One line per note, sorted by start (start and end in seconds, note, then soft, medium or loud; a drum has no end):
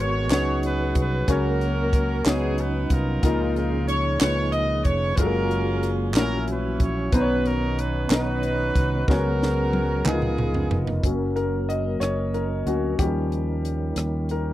0.00 0.31 G#1 loud
0.00 0.27 G#2 medium
0.00 0.30 G#3 medium
0.00 0.33 G#3 medium
0.00 0.30 B3 medium
0.00 0.30 F#4 medium
0.00 0.32 F#4 medium
0.00 0.30 A#4 medium
0.00 0.32 A#4 medium
0.00 0.31 C#5 medium
0.30 0.92 C#2 loud
0.30 1.27 F#3 medium
0.30 0.95 B3 medium
0.30 1.27 C#4 medium
0.30 1.24 C#4 medium
0.30 1.28 D#4 medium
0.30 0.95 D#4 medium
0.30 0.96 F#4 medium
0.30 1.25 F#4 medium
0.30 1.25 G#4 medium
0.30 1.28 B4 medium
0.30 0.62 C#5 medium
0.30 0.96 C#5 medium
0.30 snare loud
0.30 clap medium
0.30 closed hi-hat medium
0.63 0.94 B4 medium
0.63 closed hi-hat medium
0.95 1.25 C2 medium
0.95 1.27 B4 medium
0.95 kick medium
0.95 closed hi-hat medium
1.27 2.21 C#2 medium
1.27 2.22 C#3 medium
1.27 2.23 F#3 medium
1.27 1.92 A#3 medium
1.27 2.25 A#3 medium
1.27 1.93 C#4 medium
1.27 2.23 C#4 medium
1.27 2.22 C#4 medium
1.27 2.22 F#4 medium
1.27 1.93 F#4 medium
1.27 2.26 A#4 medium
1.27 1.93 C#5 medium
1.27 kick loud
1.27 closed hi-hat medium
1.61 closed hi-hat soft
1.93 kick medium
1.93 closed hi-hat medium
2.24 2.86 C#2 medium
2.24 3.22 F#3 medium
2.24 2.90 B3 medium
2.24 3.23 B3 medium
2.24 3.19 B3 medium
2.24 3.21 C#4 medium
2.24 3.19 C#4 medium
2.24 3.22 D#4 soft
2.24 2.90 D#4 medium
2.24 2.90 F#4 medium
2.24 2.58 G#4 medium
2.24 2.90 C#5 medium
2.24 snare loud
2.24 clap medium
2.24 closed hi-hat medium
2.58 2.91 B4 medium
2.58 closed hi-hat medium
2.90 3.20 C2 medium
2.90 3.84 D#4 medium
2.90 3.84 F4 medium
2.90 3.55 A#4 medium
2.90 kick medium
2.90 closed hi-hat medium
3.22 4.16 C#2 medium
3.22 3.87 A#2 medium
3.22 4.17 C#3 medium
3.22 3.30 D#3 medium
3.22 5.14 C#4 medium
3.22 5.14 D#4 medium
3.22 3.88 D#4 medium
3.22 3.88 F4 medium
3.22 5.14 G#4 medium
3.22 3.88 A#4 medium
3.22 kick medium
3.22 closed hi-hat medium
3.29 5.17 F3 medium
3.56 3.86 A#4 medium
3.56 closed hi-hat soft
3.88 4.18 C#5 medium
3.88 closed hi-hat medium
4.20 4.82 C#2 medium
4.20 4.85 A#2 medium
4.20 4.85 D#4 medium
4.20 4.85 F4 medium
4.20 4.86 B4 medium
4.20 4.50 C#5 medium
4.20 snare loud
4.20 clap medium
4.20 closed hi-hat medium
4.52 4.83 D#5 medium
4.52 closed hi-hat medium
4.84 5.15 F1 medium
4.84 5.17 C#5 medium
4.84 kick medium
4.84 closed hi-hat medium
5.17 6.15 F#1 loud
5.17 6.15 F#3 medium
5.17 5.83 F#3 medium
5.17 5.82 G#3 medium
5.17 6.15 A#3 medium
5.17 6.11 C#4 medium
5.17 6.11 F4 medium
5.17 6.15 F4 medium
5.17 5.83 F4 medium
5.17 6.15 G#4 medium
5.17 5.25 A4 medium
5.17 5.88 A#4 medium
5.17 kick loud
5.17 closed hi-hat medium
5.26 5.87 A#4 medium
5.51 closed hi-hat soft
5.83 closed hi-hat medium
6.14 6.76 A#1 medium
6.14 7.09 A#2 medium
6.14 7.13 E3 medium
6.14 6.22 G#3 soft
6.14 6.22 A3 medium
6.14 7.12 C#4 medium
6.14 7.09 C#4 medium
6.14 7.09 E4 medium
6.14 6.80 E4 medium
6.14 7.13 F#4 medium
6.14 6.81 F#4 medium
6.14 6.45 A#4 medium
6.14 6.81 C#5 medium
6.14 snare loud
6.14 clap medium
6.14 closed hi-hat medium
6.22 7.16 F#3 medium
6.22 6.83 C#4 medium
6.48 6.81 B4 medium
6.48 closed hi-hat medium
6.80 7.10 A#1 medium
6.80 7.11 C#5 medium
6.80 kick medium
6.80 closed hi-hat medium
7.12 8.06 B1 loud
7.12 8.07 B2 medium
7.12 9.04 D#3 medium
7.12 9.04 B3 medium
7.12 7.77 B3 medium
7.12 9.04 C#4 medium
7.12 7.78 D#4 medium
7.12 8.07 D#4 medium
7.12 8.07 F#4 medium
7.12 7.46 B4 medium
7.12 7.20 C5 medium
7.12 9.04 C#5 medium
7.12 7.78 A#5 medium
7.12 kick loud
7.12 closed hi-hat medium
7.21 7.82 C#5 medium
7.45 7.78 A#4 medium
7.45 closed hi-hat soft
7.78 8.09 B4 medium
7.78 closed hi-hat medium
8.10 8.71 B1 medium
8.10 8.75 B3 medium
8.10 8.75 D#4 medium
8.10 9.04 D#4 medium
8.10 9.04 F#4 medium
8.10 9.04 B4 medium
8.10 8.76 D#5 medium
8.10 8.76 A#5 medium
8.10 snare loud
8.10 clap medium
8.10 closed hi-hat medium
8.43 closed hi-hat medium
8.75 9.05 C2 medium
8.75 kick medium
8.75 closed hi-hat medium
9.08 10.02 C#2 medium
9.08 10.02 C#3 medium
9.08 10.06 F#3 medium
9.08 9.73 B3 medium
9.08 10.05 B3 medium
9.08 10.06 C#4 medium
9.08 9.73 F#4 medium
9.08 10.02 F#4 medium
9.08 10.06 G#4 medium
9.08 9.73 G#4 medium
9.08 10.06 A#4 medium
9.08 9.74 C#5 medium
9.08 kick loud
9.08 snare medium
9.43 snare medium
9.73 high tom medium
10.05 10.67 C#2 medium
10.05 11.00 C#3 medium
10.05 11.03 F3 medium
10.05 10.70 B3 medium
10.05 11.03 B3 medium
10.05 11.00 B3 medium
10.05 11.03 D#4 medium
10.05 10.13 D#4 soft
10.05 11.00 F4 medium
10.05 10.79 G#4 medium
10.05 11.03 A#4 medium
10.05 10.71 A#4 medium
10.05 10.71 D#5 medium
10.05 clap medium
10.05 mid tom medium
10.12 10.74 F4 medium
10.22 mid tom medium
10.38 mid tom medium
10.54 floor tom medium
10.71 11.01 F1 medium
10.71 floor tom loud
10.87 floor tom medium
11.03 11.97 F#1 medium
11.03 12.95 F#3 medium
11.03 11.98 F#3 soft
11.03 12.95 A#3 medium
11.03 11.98 A#3 soft
11.03 12.95 C#4 medium
11.03 11.98 C#4 soft
11.03 12.95 A#4 medium
11.03 kick medium
11.03 closed hi-hat medium
11.36 11.69 A#4 medium
11.36 closed hi-hat soft
11.69 12.02 D#5 medium
11.69 closed hi-hat medium
12.00 12.62 F#1 medium
12.00 12.31 C#5 medium
12.00 cross-stick medium
12.00 closed hi-hat medium
12.34 12.68 A#4 medium
12.34 closed hi-hat soft
12.66 12.96 D2 medium
12.66 12.96 F#3 soft
12.66 12.97 A#3 soft
12.66 12.96 C#4 soft
12.66 13.00 F#4 medium
12.66 closed hi-hat medium
12.99 13.93 D#2 medium
12.99 13.93 F3 soft
12.99 13.93 G3 soft
12.99 14.53 G3 medium
12.99 13.93 C#4 soft
12.99 14.53 C#4 soft
12.99 14.53 D#4 medium
12.99 13.29 G4 medium
12.99 13.06 G#4 medium
12.99 kick medium
12.99 closed hi-hat medium
13.07 14.53 A#4 medium
13.32 closed hi-hat soft
13.65 closed hi-hat medium
13.96 14.53 D#2 medium
13.96 cross-stick medium
13.96 closed hi-hat medium
14.29 14.53 A#4 medium
14.29 closed hi-hat soft